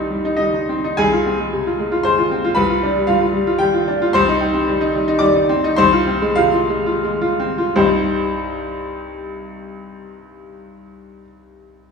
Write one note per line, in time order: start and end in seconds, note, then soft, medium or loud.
0.00 0.95 C2 loud
0.00 0.11 G3 medium
0.00 0.69 C4 medium
0.00 0.25 D#4 medium
0.00 1.01 G4 medium
0.00 0.68 C6 medium
0.00 1.02 D6 loud
0.11 0.33 G3 medium
0.25 0.36 D#4 medium
0.37 0.63 G3 medium
0.37 0.53 D#4 medium
0.37 0.98 D#5 medium
0.54 0.79 D#4 medium
0.69 0.93 C4 medium
0.84 0.99 D#4 medium
0.97 2.52 C2 loud
0.97 2.01 G#4 loud
0.97 2.04 G#5 loud
1.13 1.35 F4 medium
1.26 1.48 C4 medium
1.39 1.61 G#3 medium
1.53 1.74 C3 medium
1.67 1.87 F4 medium
1.79 2.00 G#3 medium
1.92 2.12 F4 medium
2.03 2.26 G#3 medium
2.03 2.53 C5 medium
2.03 2.56 C6 loud
2.18 2.39 F4 medium
2.31 2.52 C4 medium
2.45 2.57 F4 medium
2.55 4.10 C2 loud
2.55 3.04 B4 medium
2.55 3.07 B5 loud
2.70 2.90 F4 medium
2.83 3.03 D4 medium
2.96 3.16 G3 medium
3.07 3.29 G2 medium
3.07 3.20 F4 medium
3.07 3.60 F5 loud
3.22 3.42 F4 medium
3.33 3.55 G3 medium
3.47 3.68 F4 medium
3.58 3.82 G3 medium
3.58 4.10 G4 medium
3.58 4.14 G5 loud
3.74 3.96 F4 medium
3.88 4.09 D4 medium
4.02 4.15 F4 medium
4.13 5.74 C2 loud
4.13 5.17 C5 loud
4.13 5.21 C6 loud
4.28 4.49 D#4 medium
4.41 4.62 G4 medium
4.54 4.75 C4 medium
4.67 4.89 G3 medium
4.81 5.02 D#4 medium
4.94 5.16 G3 medium
5.08 5.30 D#4 medium
5.19 5.43 G3 medium
5.19 5.73 D5 loud
5.19 5.77 D6 loud
5.35 5.58 D#4 medium
5.49 5.72 C4 loud
5.64 5.78 D#4 loud
5.76 7.73 C2 loud
5.76 6.33 C5 loud
5.76 6.36 C6 loud
5.93 6.16 F4 medium
6.07 6.31 C4 medium
6.22 6.46 G#3 medium
6.35 6.63 C3 medium
6.35 6.52 F4 medium
6.35 7.03 F5 loud
6.54 6.80 F4 medium
6.69 6.96 G#3 medium
6.86 7.14 F4 medium
7.04 7.33 G#3 medium
7.22 7.51 F4 medium
7.40 7.69 C4 medium
7.58 7.76 F4 medium
7.76 11.21 C2 loud
7.76 11.22 G2 medium
7.76 11.22 G3 medium
7.76 11.23 C4 medium
7.76 11.23 D#4 medium
7.76 11.23 G4 medium
7.76 11.21 C5 medium